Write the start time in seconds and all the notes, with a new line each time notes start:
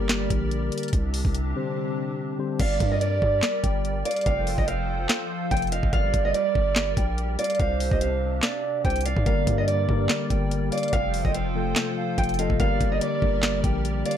Already playing: G1 D3 G3 A#3 G4 A#4 D5
0.09 snare, clap, closed hi-hat
0.30 A#1, kick, closed hi-hat
0.51 closed hi-hat
0.72 closed hi-hat
0.78 closed hi-hat
0.83 closed hi-hat
0.88 closed hi-hat
0.93 C2 C3 C4 D4 G4, kick, closed hi-hat
1.14 open hi-hat
1.25 C2, kick
1.35 closed hi-hat
1.55 D3 G3 C4 G4 C5
2.38 D3 G3 C4 G4 C5
2.60 G1 G3 G4 A#4 D5 F5, kick, closed hi-hat, crash
2.80 G2, kick, closed hi-hat
2.91 D#5
3.01 D5, closed hi-hat
3.22 G2, kick
3.43 snare, clap, closed hi-hat
3.64 G1 G5, kick, closed hi-hat
3.85 closed hi-hat
4.05 D5 F5, closed hi-hat
4.11 closed hi-hat
4.16 closed hi-hat
4.21 closed hi-hat
4.26 F1 F3 F4 A4 C5 F5 G5, kick, closed hi-hat
4.47 open hi-hat
4.58 F1 D#5, kick
4.68 F5, closed hi-hat
5.09 snare, clap, closed hi-hat
5.31 F5
5.51 F1 G5, kick, closed hi-hat
5.57 closed hi-hat
5.62 closed hi-hat
5.67 closed hi-hat
5.72 D#5 F5, closed hi-hat
5.83 F1, kick
5.93 G1 G3 G4 A#4 D5 F5, kick, closed hi-hat
6.14 G1, kick, closed hi-hat
6.25 D#5
6.34 D5, closed hi-hat
6.55 G1, kick
6.76 snare, clap, closed hi-hat
6.97 A#1 G5, kick, closed hi-hat
7.18 closed hi-hat
7.38 D5 F5, closed hi-hat
7.44 closed hi-hat
7.50 closed hi-hat
7.55 closed hi-hat
7.59 C2 C3 C4 D4 C5 F5, kick, closed hi-hat
7.80 open hi-hat
7.91 C2 D#5, kick
8.01 F5, closed hi-hat
8.43 D5, snare, clap, closed hi-hat
8.85 C2 C5 G5, kick, closed hi-hat
8.90 closed hi-hat
8.96 closed hi-hat
9.01 closed hi-hat
9.05 D5 F5, closed hi-hat
9.17 G2, kick
9.25 G1 D3 G3 A#3 G4 A#4 D5 F5, kick, closed hi-hat
9.47 G2, kick, closed hi-hat
9.58 D#5
9.68 D5, closed hi-hat
9.88 G2 D3 G3 A#3 G4 A#4, kick
10.09 snare, clap, closed hi-hat
10.30 G1 G5, kick, closed hi-hat
10.51 closed hi-hat
10.72 D5 F5, closed hi-hat
10.78 closed hi-hat
10.83 closed hi-hat
10.88 closed hi-hat
10.93 F1 F3 F4 A4 C5 F5 G5, kick, closed hi-hat
11.14 open hi-hat
11.25 F1 D#5, kick
11.34 F5, closed hi-hat
11.55 C3 F3 A3 F4 A4
11.76 snare, clap, closed hi-hat
11.97 F5
12.18 F1 G5, kick, closed hi-hat
12.24 closed hi-hat
12.29 closed hi-hat
12.34 closed hi-hat
12.38 C3 F3 A3 F4 A4 D#5 F5, closed hi-hat
12.50 F1, kick
12.59 G1 D3 G3 A#3 G4 A#4 D5 F5, kick, closed hi-hat
12.81 G1, kick, closed hi-hat
12.92 D#5
13.01 D5, closed hi-hat
13.21 G1 D3 G3 A#3 G4 A#4, kick
13.43 snare, clap, closed hi-hat
13.64 A#1 G5, kick, closed hi-hat
13.85 closed hi-hat
14.06 D5 F5, closed hi-hat
14.11 closed hi-hat